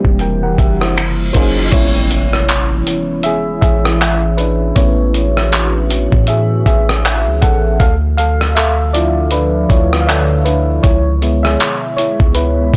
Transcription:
Already playing: C3 E3 G3 A#3 C4 D4 E4 F#4 G4
0.05 E1, kick
0.19 A#4 G5, closed hi-hat, reverse cymbal
0.43 A#4 F#5
0.58 F#1 G4 E5, kick, closed hi-hat
0.81 E4 C5, cross-stick
0.97 finger snap, closed hi-hat
1.33 F#1 F#3 A#3 C#4 D#4 F4 C5, kick, closed hi-hat
1.37 G#4
1.72 A1 E3 G#3 B3 C#4 E4 C#5, kick, closed hi-hat, crash, impact
2.11 closed hi-hat
2.33 cross-stick
2.49 clap, closed hi-hat
2.87 closed hi-hat
3.23 G#4 E5, closed hi-hat
3.61 A1 G#4 E5, kick, closed hi-hat
3.85 cross-stick
4.01 clap, closed hi-hat
4.37 D4 B4, closed hi-hat
4.76 A1 A3 B3 C#4 E4 F#4 C#5, kick, closed hi-hat
5.14 closed hi-hat
5.37 cross-stick
5.52 clap, closed hi-hat
5.90 closed hi-hat
6.12 A2, kick
6.27 G#4 E5, closed hi-hat
6.66 A1 G#4 E5, kick, closed hi-hat
6.89 cross-stick
7.05 clap, closed hi-hat
7.26 C#2
7.42 A1 A4 F#5, kick, closed hi-hat
7.80 D2 D3 F3 A4 F5, kick, closed hi-hat
8.17 A4 F5, closed hi-hat
8.41 cross-stick
8.55 A4 E5, clap, closed hi-hat
8.93 F3 D4 E4 F4 D5, closed hi-hat
9.31 D4 B4, closed hi-hat
9.69 D2 E4 C#5, kick, closed hi-hat
9.93 cross-stick
10.01 F5
10.07 A4 E5, clap, closed hi-hat
10.45 D4 B4, closed hi-hat
10.83 C#2 B2 G#3 B3 E4 C#5, kick, closed hi-hat
11.22 G#3 B3 E4, closed hi-hat
11.43 G#4 E5, cross-stick
11.60 clap, closed hi-hat
11.97 E4 C#5, closed hi-hat
12.20 C#2, kick
12.35 E4 B4, closed hi-hat
12.74 C#2, kick

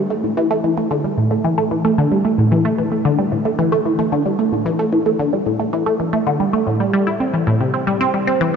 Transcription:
0.10 A3
0.24 A2
0.37 E3
0.51 A3
0.64 E3
0.78 A3
0.91 D3
1.04 G3
1.18 A2
1.31 A3
1.44 E3
1.58 A3
1.71 E3
1.85 A3
1.98 D3
2.11 G3
2.25 A3
2.38 A2
2.52 E3
2.65 A3
2.78 E3
2.92 A3
3.05 D3
3.19 G3
3.32 A2
3.45 A3
3.59 E3
3.72 A3
3.85 E3
3.99 A3
4.12 D3
4.26 G3
4.39 A3
4.52 A2
4.66 E3
4.79 A3
4.93 E3
5.06 A3
5.19 D3
5.33 G3
5.46 A2
5.60 A3
5.73 E3
5.86 A3
6.00 E3
6.13 A3
6.27 D3
6.40 G3
6.53 A3
6.67 A2
6.80 G3
6.93 G3
7.07 E4
7.20 C4
7.34 E3
7.47 A2
7.60 C3
7.74 C4
7.87 G3
8.01 C4
8.14 G3
8.27 C4
8.41 E3

